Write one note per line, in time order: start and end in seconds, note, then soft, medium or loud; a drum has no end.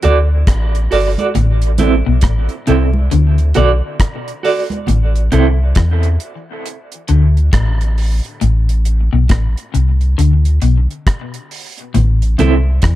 0.02 0.45 D2 medium
0.02 0.18 F#4 medium
0.02 0.18 A4 medium
0.02 0.18 D5 medium
0.02 closed hi-hat medium
0.02 low conga medium
0.47 0.88 A1 loud
0.47 kick loud
0.47 cross-stick loud
0.47 closed hi-hat loud
0.75 closed hi-hat soft
0.91 1.17 G1 medium
0.91 1.06 F#4 medium
0.91 1.06 A4 medium
0.91 1.07 D5 medium
0.91 open hi-hat medium
1.18 1.27 F#4 medium
1.18 1.26 A4 medium
1.18 1.26 D5 medium
1.18 closed hi-hat soft
1.18 high conga medium
1.35 2.03 A1 loud
1.35 1.62 A2 medium
1.35 closed hi-hat medium
1.35 low conga medium
1.62 closed hi-hat medium
1.78 1.94 C4 medium
1.78 1.94 E4 medium
1.78 1.95 A4 medium
1.78 closed hi-hat medium
1.78 high conga medium
1.78 low conga medium
2.06 2.23 B1 medium
2.06 2.17 B2 medium
2.21 2.49 A1 medium
2.21 2.40 A2 medium
2.21 kick loud
2.21 cross-stick loud
2.21 closed hi-hat medium
2.49 closed hi-hat soft
2.67 3.09 C2 loud
2.67 2.94 C3 medium
2.67 2.82 C4 medium
2.67 2.82 E4 medium
2.67 2.83 A4 medium
2.67 closed hi-hat medium
2.93 high conga medium
3.11 3.53 D2 medium
3.11 3.38 D3 medium
3.11 closed hi-hat medium
3.11 low conga medium
3.38 closed hi-hat soft
3.54 3.82 B1 medium
3.54 3.72 B2 medium
3.54 3.70 F#4 medium
3.54 3.71 A4 loud
3.54 3.71 D5 medium
3.54 closed hi-hat medium
3.54 low conga medium
4.00 kick loud
4.00 cross-stick loud
4.00 closed hi-hat loud
4.28 closed hi-hat soft
4.43 4.58 F#4 medium
4.43 4.59 A4 medium
4.43 4.59 D5 medium
4.43 open hi-hat medium
4.70 closed hi-hat soft
4.70 high conga medium
4.87 5.30 A1 loud
4.87 5.15 A2 medium
4.87 closed hi-hat medium
4.87 low conga medium
5.16 closed hi-hat soft
5.32 5.74 C2 medium
5.32 5.59 C3 medium
5.32 5.47 C4 medium
5.32 5.47 E4 medium
5.32 5.47 A4 loud
5.32 closed hi-hat medium
5.75 6.18 E2 loud
5.75 6.03 E3 medium
5.75 kick loud
5.75 cross-stick loud
5.75 closed hi-hat loud
6.03 closed hi-hat soft
6.20 closed hi-hat medium
6.66 closed hi-hat medium
6.92 closed hi-hat soft
7.08 7.50 D2 medium
7.08 7.35 D3 medium
7.08 closed hi-hat medium
7.37 closed hi-hat soft
7.53 8.21 A1 loud
7.53 7.79 A2 medium
7.53 kick loud
7.53 cross-stick loud
7.53 closed hi-hat loud
7.81 closed hi-hat soft
7.98 open hi-hat medium
8.25 closed hi-hat soft
8.41 9.09 A1 loud
8.41 8.68 A2 medium
8.41 closed hi-hat medium
8.69 closed hi-hat soft
8.85 closed hi-hat medium
9.13 9.29 B1 medium
9.13 9.23 B2 medium
9.29 9.55 A1 medium
9.29 9.46 A2 medium
9.29 kick loud
9.29 cross-stick loud
9.29 closed hi-hat loud
9.57 closed hi-hat soft
9.74 10.15 C2 medium
9.74 10.00 C3 medium
9.74 closed hi-hat medium
10.01 closed hi-hat soft
10.18 10.59 D2 loud
10.18 10.45 D3 medium
10.18 closed hi-hat medium
10.45 closed hi-hat soft
10.62 10.87 B1 medium
10.62 10.78 B2 medium
10.62 closed hi-hat medium
10.90 closed hi-hat soft
11.07 kick loud
11.07 cross-stick loud
11.07 closed hi-hat loud
11.34 closed hi-hat medium
11.51 open hi-hat medium
11.78 closed hi-hat soft
11.94 12.36 A1 loud
11.94 12.21 A2 medium
11.94 closed hi-hat medium
11.94 low conga medium
12.22 closed hi-hat soft
12.38 12.80 C2 medium
12.38 12.65 C3 medium
12.38 12.53 C4 medium
12.38 12.54 E4 medium
12.38 12.54 A4 medium
12.38 closed hi-hat medium
12.38 high conga medium
12.38 low conga medium
12.82 12.95 E2 loud
12.82 12.95 E3 medium
12.82 kick loud
12.82 cross-stick loud
12.82 closed hi-hat medium